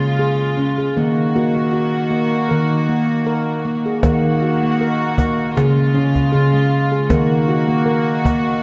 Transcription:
Already playing: C#3 G#3 C#4 F4
0.19 G#4
0.57 C#4
0.78 G#4
0.97 D#3 A#3 F#4
1.36 A#3 F#4
1.55 A#3
1.73 F#4
2.11 A#3
2.49 D#3 A#4
2.89 A#3
3.27 A#4
3.65 A#3
3.86 G#4
4.03 D#3 A#3 F#4, cajon bass, cajon slap
4.43 F#4
4.62 A#3, cajon slap
4.81 A#4
5.18 A#3, cajon bass
5.39 cajon slap
5.55 C#3 G#3 F4 G#4, cajon slap
5.94 C#3 C#4
6.15 cajon bass, cajon slap
6.32 C#3 G#4
6.53 G#3
6.72 cajon slap
6.92 G#4
7.10 D#3 A#3 F#4, cajon bass, cajon slap
7.49 F#4
7.68 A#3, cajon slap
7.86 A#4
8.25 A#3, cajon bass
8.46 cajon slap

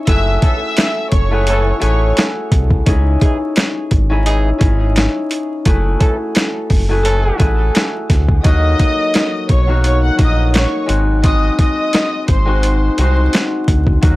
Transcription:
Already playing: C#4 D#4
0.07 F#1 A3 E4 F#4 G#4 E5 E6, kick, closed hi-hat
0.42 E3 C#4 A4 E5 E6, kick, closed hi-hat
0.77 finger snap, snare, closed hi-hat
1.11 F#1 C#5 C#6, kick, closed hi-hat
1.31 A3 E4 F#4 G#4
1.47 E3 C#4 A4, closed hi-hat
1.80 A1 A3 E4 F#4 G#4 C#5 C#6, closed hi-hat
2.17 finger snap, snare, closed hi-hat
2.52 C2, kick, closed hi-hat
2.70 kick
2.86 C#2 C#4 D#4 E4 G#4, kick, closed hi-hat
3.21 E3 D#4 G#4, kick, closed hi-hat
3.56 finger snap, snare, closed hi-hat
3.91 G#1, kick, closed hi-hat
4.09 C#4 D#4 E4 G#4
4.26 E3 D#4 G#4, closed hi-hat
4.58 G#1 C#4 D#4 E4 G#4, kick, closed hi-hat
4.96 finger snap, snare, closed hi-hat
5.31 closed hi-hat
5.65 F#1 A3 E4 F#4 G#4, kick, closed hi-hat
6.00 E3 C#4 A4, kick, closed hi-hat
6.35 finger snap, snare, closed hi-hat
6.70 F#1, kick, open hi-hat
6.89 A3 E4 F#4 G#4
7.04 E3 C#4 A4, closed hi-hat
7.38 A1 A3 E4 F#4 G#4, kick, closed hi-hat
7.75 finger snap, snare, closed hi-hat
8.10 D2, kick, snare, closed hi-hat
8.29 kick
8.43 D#2 F#3 A#3 D#4 F#4 D#5 D#6, kick, closed hi-hat
8.79 kick, closed hi-hat
9.14 snare, closed hi-hat
9.49 B1 C#5 C#6, kick, closed hi-hat
9.67 F#3 A#3 D#4 F#4
9.84 C#5 C#6, closed hi-hat
10.03 F#5 F#6
10.17 A#1 F#3 A#3 D#4 F#4 D#5 D#6, kick, closed hi-hat
10.54 C#5 C#6, snare, closed hi-hat
10.86 G#1 G#3 C4 D#4 F#4, closed hi-hat
11.22 G#3 C4 D#4 F#4 D#5 D#6, kick, closed hi-hat
11.59 D#5 D#6, kick, closed hi-hat
11.93 snare, closed hi-hat
12.28 G#1 C5 C6, kick, closed hi-hat
12.45 G#3 C4 D#4 F#4
12.63 closed hi-hat
12.98 C2 G#3 C4 D#4 F#4 C5 C6, closed hi-hat
13.33 snare, closed hi-hat
13.68 D2, kick, closed hi-hat
13.87 kick
14.01 D#2 F#3 A#3 D#4 F#4, kick, closed hi-hat

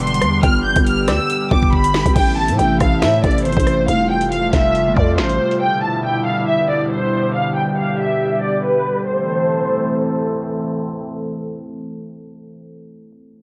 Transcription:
Already playing: E1 D3 E3 G3 B3 F5
0.00 C6, closed hi-hat
0.07 closed hi-hat
0.14 closed hi-hat
0.21 E2, cross-stick, closed hi-hat
0.43 G1 G4 G5 F6, kick, closed hi-hat
0.65 G6
0.76 G1, kick, closed hi-hat
0.86 F6, closed hi-hat
1.08 D2 D5 E6, cross-stick, snare, closed hi-hat
1.30 closed hi-hat
1.51 G1 D6, kick
1.62 kick
1.73 B5, kick
1.84 closed hi-hat
1.94 snare
2.06 G1, kick, closed hi-hat
2.16 A1 C3 E3 A3 E4 G5, kick, closed hi-hat, crash
2.38 A5
2.48 A2, closed hi-hat
2.59 A1 G5, closed hi-hat
2.80 A1 F5, kick, cross-stick, closed hi-hat
3.01 A2 E5, finger snap, snare
3.24 A1 D5, kick, closed hi-hat
3.31 closed hi-hat
3.38 closed hi-hat
3.45 G1 C5, closed hi-hat
3.52 closed hi-hat
3.57 A1, kick, closed hi-hat
3.67 cross-stick, closed hi-hat
3.88 F1 G3 A3 F4 F5, closed hi-hat
4.10 G5
4.21 closed hi-hat
4.32 F5, closed hi-hat
4.53 F1 E5, kick, snare, closed hi-hat
4.75 closed hi-hat
4.86 G1
4.96 F2 D5, kick
5.18 A1 C5, finger snap, snare
5.29 closed hi-hat
5.51 closed hi-hat
5.61 B2 D3 E4 G5
5.83 A5
6.04 G5
6.25 F5
6.47 E5
6.69 D5
6.91 C5
7.34 G4 F5
7.55 G5
7.77 F5
7.98 E5
8.42 D5
8.64 B4
9.06 E3 A3 C4 A4 C5

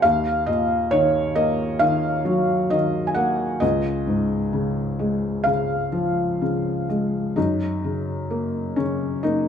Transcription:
0.02 D#2 F5
0.47 A#2 D#5
0.91 D#3 C#5
1.35 A#3 D#5
1.79 D#3 F5
2.25 F#3
2.70 D#3 D#5
3.07 G#5
3.15 A#3 F#5
3.60 C#2 D#5
4.07 G#2
4.53 C#3
4.99 G#3
5.44 C#3 F5
5.92 F3
6.42 C#3
6.89 G#3
7.36 F#2 D#4
7.84 C#3
8.30 A#3
8.76 C#3 C#4
9.23 A#3 D#4

